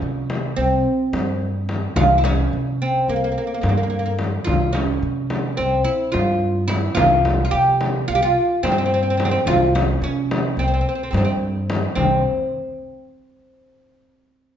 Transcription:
Already playing: C#4
0.02 C3
0.30 frame drum
0.56 C2 C4
1.13 G2, frame drum
1.69 frame drum
1.96 C2 F4, frame drum
2.18 E4
2.24 C#4, frame drum
2.53 C3
2.82 C4
3.08 C2 A#3
3.16 A#3
3.24 A#3
3.32 A#3
3.38 A#3
3.47 A#3
3.54 A#3
3.61 G2 A#3, frame drum
3.69 A#3
3.77 A#3
3.83 A#3
3.90 A#3
3.99 A#3
4.06 A#3
4.19 frame drum
4.44 C2 F4, frame drum
4.73 C#4, frame drum
5.02 C3
5.30 frame drum
5.57 C2 C4
5.84 E4
6.12 G2 F4, frame drum
6.68 E4, frame drum
6.95 C2 F4, frame drum
7.25 frame drum
7.45 F4
7.51 C3 G4
7.81 frame drum
8.08 C2 F4
8.15 G4
8.22 F4
8.63 G2 C4, frame drum
8.72 C4
8.78 C4
8.86 C4
8.94 C4
9.03 C4
9.10 C4
9.17 C4, frame drum
9.25 C4
9.31 C4
9.46 C2 F4, frame drum
9.75 C#4, frame drum
10.02 C3 C#4
10.31 frame drum
10.57 C2 C4
10.68 C4
10.74 C4
10.81 C4
10.89 C4
10.95 C4
11.03 C4
11.11 G2 C4, frame drum
11.17 C4
11.25 C4
11.70 frame drum
11.95 C2 C4, frame drum

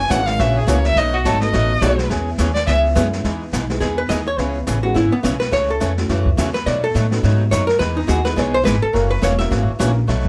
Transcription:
Already playing: G#5
0.09 G#1 C#3 E3 A#3 C#4 F#4 F#5, kick, snare, hi-hat pedal
0.26 F5, snare
0.39 A#1 C#3 E3 A#3 C#4 F#4 E5, brush sweep, kick, snare
0.58 G#4
0.67 C#2 C#3 E3 A#3 C#4 E4 F#4 A#4 C#5, kick, snare, hi-hat pedal
0.85 E5, snare
0.96 B1 B2 F#3 A3 D#4 F#4 D#5, brush sweep, kick, snare
1.14 F#4
1.25 G#1 B2 F#3 A3 D#4 F#4 A4, kick, snare, hi-hat pedal
1.41 A3 B3 D#4 F#4 A4 D#5, snare
1.53 A1 B2 F#3 A3 D#4 F#4, brush sweep, kick, snare
1.81 B1 B2 F#3 A3 B3 D#4 F#4 G#4, kick, snare, hi-hat pedal
1.99 snare
2.10 E2 E3 B3 C#4 G#4, brush sweep, kick, snare
2.38 D#2 E3 B3 C#4 G#4, kick, snare, hi-hat pedal
2.54 D5, snare
2.67 C#2 E3 B3 C#4 G#4 E5, brush sweep, kick, snare
2.95 F#2 E3 G#3 B3 C#4 E4 G#4, kick, snare, hi-hat pedal
3.13 snare
3.24 E2 E3 G#3 B3 D#4 G#4, brush sweep, kick, snare
3.53 B1 E3 G#3 B3 D#4 G#4, kick, snare, hi-hat pedal
3.70 G#3 B3 D#4 E4 G#4, snare
3.80 E2 E3 G#3 B3 D#4 G#4, brush sweep, kick, snare
3.98 B4
4.09 D#2 E3 G#3 B3 D#4 G#4 D#5, kick, snare, hi-hat pedal
4.28 C#5
4.38 C#2 C#3 E3 B3 C#4 G#4 B4, brush sweep, kick, snare
4.67 A1 C#3 E3 B3 C#4 G#4, kick, snare, hi-hat pedal
4.82 G#3 B3 C#4 E4 F#4 G#4
4.94 G#1 C#3 E3 B3 C#4 E4 G#4, brush sweep, kick, snare
5.12 B3, muted upright bass stroke
5.23 B1 C#3 E3 B3 C#4 G#4, kick, snare, hi-hat pedal
5.40 B4, snare
5.51 C#2 C#3 E3 A3 C#4 F#4 C#5, brush sweep, kick, snare
5.70 A4
5.80 F2 C#3 E3 A3 C#4 F#4, kick, snare, hi-hat pedal
5.98 A3 C#4 E4 F#4 A4, snare
6.09 F#2 C#3 E3 A3 C#4 F#4, brush sweep, kick, snare
6.26 kick
6.37 E2 C#3 E3 A3 C#4 F#4, kick, snare, hi-hat pedal
6.54 B4, snare
6.66 B2 F#3 A3 D#4 F#4 D5, brush sweep, kick, snare
6.84 A4
6.94 A2 B2 F#3 A3 D#4 F#4, kick, snare, hi-hat pedal
7.11 B3 C#4 D#4 F#4 A4, snare
7.23 G#2 B2 F#3 A3 D#4 F#4, brush sweep, kick, snare
7.51 F#2 B2 F#3 A3 D#4 F#4 C#5, kick, snare, hi-hat pedal
7.67 A#4, snare
7.79 E2 E3 G#3 B3 D#4 G#4 B4, brush sweep, kick, snare
7.97 D#4
8.07 D#2 E3 G#3 B3 D#4 F#4 G#4, kick, snare, hi-hat pedal
8.25 B3 D#4 E4 G#4 B4, snare
8.36 B1 E3 G#3 B3 D#4 G#4 C#5, brush sweep, kick, snare
8.54 C5
8.63 G#1 E3 G#3 B3 D#4 G#4 B4, kick, snare, hi-hat pedal
8.82 A4, muted upright bass stroke
8.93 F#1 C#3 E3 A#3 C#4 F#4 A#4, brush sweep, kick, snare
9.11 B4
9.21 E1 C#3 E3 A#3 C#4 F#4 C#5, kick, snare, hi-hat pedal
9.39 A#3 C#4 E4 F#4 A#4 E5, snare
9.50 G#1 C#3 E3 A#3 C#4 F#4, brush sweep, kick, snare
9.69 muted upright bass stroke
9.79 A#1 C#3 E3 A#3 C#4 E4 F#4 A#4, kick, snare, hi-hat pedal
10.07 B1 B2 F#3 A3 D#4 F#4, brush sweep, kick, snare
10.25 kick

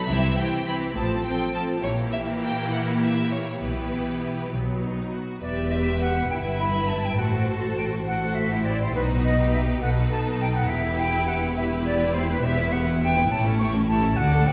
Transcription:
0.08 C2 C3 E3 C4 E4 G4 E5
0.37 E3 C4 E4 G4 G5
0.66 E3 C4 E4 G4 B5
0.95 A1 A2 F3 C4 A4 A5
1.24 F3 C4 A4 G5
1.53 F3 C4 A4 A5
1.83 A#1 A#2 E3 A#3 E4 G4 C#5
2.12 E5
2.42 G5
2.72 F#5
3.02 E5
3.32 C#5
3.61 B1 B2 E3 B3 E4 G4 B4
4.52 B1 B2 F#3 B3
4.81 D#4
5.12 F#4
5.41 E1 E2 G4 B4 D5 E5
5.72 E5
6.01 F#5
6.30 G1 G2 E4 B4 E5 G5
6.60 B5
6.89 A5
7.05 G5
7.18 A1 A2 F#4 A4 C5 F#5
7.49 A5
7.78 G5
8.06 F#4 A4 C5 F#5
8.37 E5
8.50 E4 G4
8.65 D5
8.81 C5
8.95 B1 B2 D#4 F#4 B4
9.24 D#5
9.39 G4
9.54 E5
9.83 B1 B2 D#4 A4 B4 F#5
10.12 A5
10.41 G5
10.56 F#5
10.70 E1 E2 E4 G4 B4 E5
10.99 G5
11.28 F#5
11.57 E4 G4 B4 E5
11.85 D5
12.15 C5
12.30 B4
12.43 E1 E2 B3 G4 E5
12.58 E4 B4
12.72 B3 G4 E5 F#5
12.86 E4 B4
13.01 B3 G4 E5 G5
13.16 E4 B4
13.30 A1 A2 E4 G4 C#5 A5
13.45 C#4 E4 A4
13.60 E4 G4 C#5 C#6
13.74 C#4 E4 A4
13.89 E4 G4 C#5 A5
14.03 C#4 E4 A4
14.17 D2 A3 F#4 D5 F#5
14.32 D4 A4
14.46 A3 F#4 D5 G5

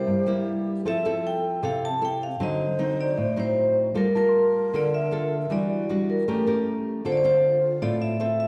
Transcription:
Already playing: G4 C5
0.07 G2
0.26 G3 A#3 E4
0.85 F3 C4 E4 A4 E5
1.05 C4 E4 A4
1.27 G5
1.63 C3 C4 E4 A4 F5
1.85 A5
2.01 C4 E4 A4 G5
2.23 F5
2.40 D3 F#3 C4 D#4 C5 D#5
2.79 F#3 C4 D#4
3.01 D5
3.17 A2
3.36 F#3 C4 D#4 C5
3.94 G3 A#3 F4 A4 A#4
4.15 A#3 F4 A#4 A5
4.29 C6
4.73 D3 A#3 F4 A4 D5
4.94 E5
5.11 A#3 F4 A4
5.50 E3 G3 D4 F#4 D5
5.70 D5
5.89 G3 D4 F#4
6.10 A#4
6.27 A3 C#4 G4 A#4
6.47 C#4 G4 A#4
7.03 D3 C4 F4 A4 C5
7.12 D5
7.17 C5
7.24 C4 F4 A4 C5
7.82 A2 C4 F4 A4 D5
8.02 E5
8.20 C4 F4 A4 E5
8.40 E5

